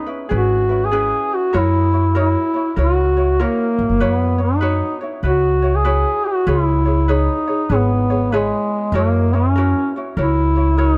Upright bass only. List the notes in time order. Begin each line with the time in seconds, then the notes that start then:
0.31 G#1
1.54 F#2
2.77 C#2
3.79 G#1
3.90 F#1
4.00 F#2
5.23 C#2
6.47 C#2
7.70 G#1
8.92 F#2
10.17 C#2